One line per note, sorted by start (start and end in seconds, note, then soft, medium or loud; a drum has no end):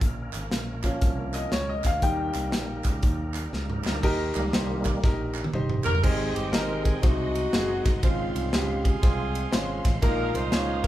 0.01 0.29 A#1 loud
0.01 2.01 F3 medium
0.01 3.99 A#3 medium
0.01 2.00 C#4 medium
0.01 3.99 A#4 medium
0.01 kick loud
0.01 closed hi-hat medium
0.33 0.49 G#1 medium
0.33 clap medium
0.33 closed hi-hat medium
0.51 0.94 A#1 medium
0.51 snare loud
0.51 closed hi-hat medium
0.84 1.49 F3 medium
0.84 1.49 A#3 medium
0.84 1.49 C#4 medium
0.84 kick medium
0.84 clap loud
0.84 closed hi-hat medium
1.01 1.45 C2 loud
1.01 kick loud
1.01 snare soft
1.01 closed hi-hat medium
1.34 1.53 D#5 medium
1.34 clap medium
1.34 closed hi-hat medium
1.52 1.80 C#2 medium
1.52 1.70 C#5 medium
1.52 snare loud
1.52 closed hi-hat medium
1.69 1.85 D#5 medium
1.84 2.00 D2 medium
1.84 2.02 F5 medium
1.84 kick medium
1.84 snare soft
1.84 clap medium
1.84 closed hi-hat medium
2.02 2.30 D#2 loud
2.02 3.99 G3 medium
2.02 4.02 G3 medium
2.02 3.99 A#3 medium
2.02 4.01 D#4 medium
2.02 4.00 D#4 medium
2.02 3.31 G5 loud
2.02 kick loud
2.02 closed hi-hat medium
2.34 2.53 C2 medium
2.34 clap medium
2.34 closed hi-hat medium
2.52 2.80 A#1 loud
2.52 snare loud
2.52 closed hi-hat medium
2.84 3.00 C#2 medium
2.84 kick medium
2.84 clap loud
2.84 closed hi-hat medium
3.03 3.46 D#2 loud
3.03 kick loud
3.03 closed hi-hat medium
3.34 clap loud
3.34 closed hi-hat medium
3.53 3.80 C#2 medium
3.53 snare medium
3.70 mid tom medium
3.84 4.01 D2 medium
3.84 snare loud
3.84 clap loud
4.03 4.31 D#2 loud
4.03 4.82 D#3 medium
4.03 4.41 D#4 loud
4.03 4.41 G4 loud
4.03 4.41 A#4 loud
4.03 kick medium
4.03 crash medium
4.35 4.51 C#2 medium
4.35 5.00 D#3 medium
4.35 5.00 G3 medium
4.35 5.00 A#3 medium
4.35 clap loud
4.35 ride medium
4.53 4.96 C2 medium
4.53 4.91 D#4 medium
4.53 4.91 G4 medium
4.53 4.91 C5 loud
4.53 snare loud
4.53 ride medium
4.85 kick medium
4.85 clap loud
4.85 ride medium
5.03 5.46 A#1 loud
5.03 5.41 D#4 medium
5.03 5.41 G4 medium
5.03 5.42 A#4 medium
5.03 kick loud
5.03 snare medium
5.34 clap loud
5.44 high tom medium
5.53 5.81 F#1 medium
5.53 5.91 D#4 medium
5.53 5.91 G4 medium
5.53 5.92 C5 loud
5.53 mid tom medium
5.70 mid tom medium
5.84 6.01 G1 medium
5.84 6.02 A#4 loud
5.84 clap loud
5.84 floor tom loud
5.95 floor tom loud
6.03 6.31 G#1 loud
6.03 6.81 G#2 medium
6.03 6.41 G#3 medium
6.03 8.01 G#3 medium
6.03 6.41 C4 medium
6.03 7.00 C4 medium
6.03 6.41 D#4 medium
6.03 7.00 D#4 medium
6.03 6.41 G4 medium
6.03 6.36 G#4 loud
6.03 6.42 C5 medium
6.03 8.01 D#5 medium
6.03 7.03 G5 medium
6.03 9.98 C6 medium
6.03 kick loud
6.03 crash loud
6.35 6.51 G1 loud
6.35 6.53 G4 loud
6.35 ride medium
6.53 6.96 G#1 loud
6.53 6.91 G#3 medium
6.53 6.91 C4 medium
6.53 6.91 D#4 medium
6.53 6.91 G4 medium
6.53 6.83 A#4 loud
6.53 6.91 A#4 medium
6.53 snare loud
6.53 ride medium
6.84 7.03 G#4 loud
6.84 kick medium
6.84 ride medium
7.02 7.46 C2 loud
7.02 7.81 C3 medium
7.02 7.40 G#3 medium
7.02 7.40 C4 medium
7.02 7.99 D#4 medium
7.02 7.41 D#4 medium
7.02 7.99 F#4 loud
7.02 7.41 F#4 medium
7.02 7.41 C5 medium
7.02 8.02 F#5 medium
7.02 kick loud
7.02 snare soft
7.02 ride medium
7.35 ride medium
7.53 7.80 F#1 loud
7.53 7.90 G#3 medium
7.53 7.91 C4 medium
7.53 7.91 D#4 medium
7.53 7.91 F#4 medium
7.53 7.91 G#4 medium
7.53 snare loud
7.53 ride medium
7.85 8.01 G1 loud
7.85 kick loud
7.85 snare soft
7.85 ride medium
8.03 8.30 G#1 loud
8.03 8.81 G#2 medium
8.03 8.41 C#3 medium
8.03 8.40 G#3 medium
8.03 10.87 G#3 medium
8.03 8.84 C4 medium
8.03 8.99 C#4 medium
8.03 8.53 F4 medium
8.03 8.41 F4 medium
8.03 8.41 C5 medium
8.03 10.87 F5 medium
8.03 kick loud
8.03 ride medium
8.35 8.50 C2 medium
8.35 ride medium
8.53 8.95 C#2 loud
8.53 8.91 C#3 medium
8.53 8.90 G#3 medium
8.53 8.91 F4 medium
8.53 8.91 G4 loud
8.53 8.90 C5 medium
8.53 snare loud
8.53 ride medium
8.85 9.80 C4 medium
8.85 9.80 F4 medium
8.85 9.80 G#4 loud
8.85 kick loud
8.85 ride medium
9.02 9.45 C2 loud
9.02 9.40 G#3 medium
9.02 9.40 C4 medium
9.02 9.40 F4 medium
9.02 9.40 C5 medium
9.02 kick loud
9.02 snare soft
9.02 ride medium
9.35 ride medium
9.52 9.80 G#1 medium
9.52 9.89 G#3 loud
9.52 9.89 C4 medium
9.52 9.90 C#4 medium
9.52 9.90 F4 medium
9.52 9.90 C5 loud
9.52 snare loud
9.52 ride medium
9.85 10.00 A1 medium
9.85 kick loud
9.85 snare soft
9.85 ride medium
10.02 10.30 A#1 loud
10.02 10.80 A#2 medium
10.02 10.39 G#3 medium
10.02 10.39 A#3 medium
10.02 10.34 D#4 medium
10.02 10.40 D#4 medium
10.02 10.87 F4 medium
10.02 10.40 F4 medium
10.02 10.32 A#4 loud
10.02 10.40 A#4 medium
10.02 10.87 A#5 medium
10.02 10.87 D#6 medium
10.02 kick loud
10.02 ride medium
10.35 10.50 C2 medium
10.35 10.87 D#4 medium
10.35 10.87 G#4 medium
10.35 10.84 C5 loud
10.35 ride medium
10.52 10.87 C#2 loud
10.52 10.87 G#3 medium
10.52 10.87 A#3 medium
10.52 10.87 D#4 medium
10.52 10.87 F4 medium
10.52 10.87 C#5 medium
10.52 snare loud
10.52 ride medium
10.84 kick medium
10.84 ride medium